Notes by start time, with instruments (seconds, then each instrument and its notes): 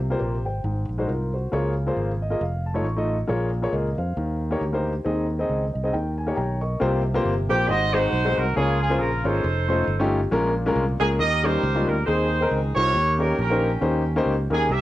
Already playing: fingered electric bass C2, grand piano C3
0.10 grand piano A#3 F4 G4 C5
0.20 fingered electric bass A#1, grand piano G4 C5
0.45 fingered electric bass G#1, grand piano C5 G5
0.64 fingered electric bass G#1, grand piano G#2
0.89 fingered electric bass A#1
0.98 grand piano G#3 D#4 F#4 C5
1.08 fingered electric bass C2, grand piano F4 A#4
1.34 grand piano F#4 C5
1.52 fingered electric bass C#2, grand piano C#3 A#3 F4 G#4 C#5
1.87 grand piano A#3 F4 G#4 C5
1.96 fingered electric bass G#1
2.22 grand piano D#5
2.30 grand piano A#3 F4 G#4 D#5
2.41 fingered electric bass F1, grand piano F5
2.66 grand piano A5
2.74 grand piano A3 D#4 F4 C#5
2.84 fingered electric bass A1, grand piano C#6
2.96 grand piano A3 D#4 F4 D#5
3.27 fingered electric bass A#1, grand piano A#2 A#3 F4 G#4 C#5
3.62 grand piano A#3 F4 G#4 C#5
3.73 fingered electric bass C#2, grand piano A#4 D#5
3.98 fingered electric bass F2, grand piano C5 F5
4.17 fingered electric bass D#2, grand piano D#3
4.51 grand piano A#3 D#4 G4 C#5
4.61 fingered electric bass D2
4.73 grand piano A#3 D#4 G4 C5
5.05 fingered electric bass D#2, grand piano D#3 C4 D#4 G#4 D#5
5.39 grand piano C4 D#4 G#4 D#5
5.49 fingered electric bass C#2
5.74 fingered electric bass C2, grand piano D#5
5.84 grand piano C4 D#4 G#4 D#5
5.93 fingered electric bass D#2, grand piano D#3 G5
6.18 grand piano G#5
6.27 grand piano A#3 D#4 G4 C#5
6.36 fingered electric bass B1, grand piano C#5 G5 A#5
6.61 grand piano A#4 D#5 C#6
6.80 fingered electric bass C2, grand piano C3 A#3 C4 F4 G4 C5
7.14 grand piano A#3 C4 F4 G4 C5
7.25 fingered electric bass G1
7.49 fingered electric bass A#1, grand piano A#3 C4 F4 G4 C5, horn section G4
7.69 fingered electric bass G#1, grand piano G#2, horn section F#4 C5 D#5
7.93 grand piano G#3 C4 D#4 F#4 C5, horn section D#4 F#4 C5
8.13 fingered electric bass B1
8.25 grand piano G#3 C4 D#4 F#4 C5
8.37 fingered electric bass C2, horn section A#4
8.56 fingered electric bass C#2, grand piano C#3 A#3 C#4 F4 G#4 C#5, horn section F4 G#4
8.81 horn section G#4
8.90 grand piano A#3 C#4 F4 G#4 C5
9.00 fingered electric bass A#1, horn section A#4
9.24 fingered electric bass G#1, grand piano A#3 C#4 F4 G#4 C#5, horn section D#4 A4 C5
9.44 fingered electric bass F1
9.68 grand piano A3 C#4 D#4 F4 C5
9.87 fingered electric bass G1
9.99 grand piano A3 C#4 D#4 F4 G4
10.31 fingered electric bass A#1, grand piano A#2 G#3 A#3 C#4 F4 A#4
10.66 grand piano G#3 A#3 C#4 F4 A#4
10.76 fingered electric bass C2
11.00 fingered electric bass C#2, grand piano G#3 A#3 C#4 F4 A#4, horn section G#4
11.19 fingered electric bass D#2, grand piano D#3, horn section G4 A#4 D#5
11.43 grand piano G3 A#3 C#4 D#4 A#4, horn section G4 C5
11.63 fingered electric bass C#2
11.75 grand piano G3 A#3 C#4 D#4 F4
11.87 fingered electric bass D2, horn section A#4
12.05 fingered electric bass D#2, grand piano D#3 C4 D#4 G#4, horn section D#4 G#4 C5
12.41 grand piano C4 D#4 A#4
12.51 fingered electric bass C#2
12.74 fingered electric bass C2, grand piano C4 D#4 F4, horn section G4 A#4 C#5
12.94 fingered electric bass D#2, grand piano D#3
13.19 grand piano A#3 C#4 D#4 G4 C#5, horn section A#4
13.39 fingered electric bass A#1, horn section C#4 G4 A#4
13.50 grand piano A#3 C#4 D#4 G4 C5
13.81 fingered electric bass D#2, grand piano A#3 C#4 D#4 G4 C5
14.16 grand piano A#3 C#4 D#4 G4 C5
14.26 fingered electric bass C#2
14.50 fingered electric bass D#2, grand piano A#3 C#4 D#4 G4 A#4, horn section G#4
14.69 fingered electric bass C2, grand piano C3, horn section G4 A#4 E5